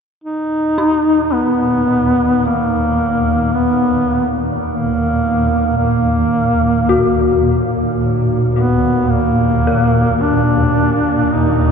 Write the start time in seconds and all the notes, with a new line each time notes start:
0.23 D#2 A#2 D#4
0.78 D#4
1.33 B3
2.45 A#3
3.54 B3
4.66 A#3
5.77 A#3
6.89 F#4
8.55 B3
9.10 A#3
9.67 A#4
10.21 D4
11.32 D#4